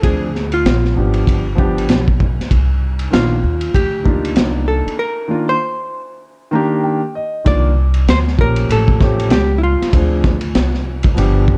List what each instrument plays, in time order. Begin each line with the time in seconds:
0.02 upright bass D2, grand piano F3 C4 D4 G#4, hollow-body jazz guitar G#4, kick, ride
0.35 snare
0.52 hollow-body jazz guitar F4, ride
0.65 upright bass A#1, snare, hi-hat pedal, ride
0.85 snare
0.94 upright bass G#1, grand piano F3 B3 D4
0.98 grand piano G4
1.14 ride
1.27 upright bass G1, kick, ride
1.55 grand piano F3 B3 D4 G4, kick
1.78 ride
1.89 upright bass B1, snare, hi-hat pedal, ride
2.08 kick
2.20 kick
2.39 muted upright bass stroke, snare, ride
2.51 upright bass C2, kick, ride
2.99 ride
3.10 upright bass A#1, grand piano D#3 A#3 D4, hollow-body jazz guitar F4, snare, hi-hat pedal, ride
3.14 grand piano F4
3.43 upright bass D#2
3.61 ride
3.74 upright bass D2, hollow-body jazz guitar G4, kick, ride
4.03 grand piano A#3 D4 D#4 F4, kick
4.25 ride
4.36 upright bass C2, snare, hi-hat pedal, ride
4.68 hollow-body jazz guitar A4
4.86 muted upright bass stroke, ride
4.99 hollow-body jazz guitar A#4
5.28 grand piano D#3 A#3 D4 F4
5.49 hollow-body jazz guitar C5
6.51 grand piano D#3 A#3 D4 A#5
6.55 grand piano G4
6.84 grand piano G5
7.15 grand piano D#5
7.44 upright bass C2, grand piano D#3 A#3 D4 F4, hollow-body jazz guitar D5, kick, ride
7.94 ride
8.07 upright bass D2, hollow-body jazz guitar C5, snare, hi-hat pedal, ride
8.28 snare
8.37 upright bass A#1, grand piano F3 A#3 C#4, hollow-body jazz guitar A#4, kick
8.42 grand piano G4
8.56 ride
8.69 upright bass A1, hollow-body jazz guitar A4, ride
8.88 kick
9.00 grand piano F3 A3 C#4 G4, kick, snare
9.20 ride
9.30 upright bass C#2, hollow-body jazz guitar G4, snare, hi-hat pedal, ride
9.58 hollow-body jazz guitar E4
9.63 hollow-body jazz guitar F4
9.82 muted upright bass stroke, snare, ride
9.92 upright bass D2, grand piano F3 C4 D4, kick, ride
9.96 grand piano G#4
10.24 kick, snare
10.41 ride
10.55 upright bass C2, snare, hi-hat pedal, ride
10.74 snare
11.03 kick, ride
11.15 upright bass G1, grand piano F3 B3 D4, ride
11.19 grand piano G4
11.48 kick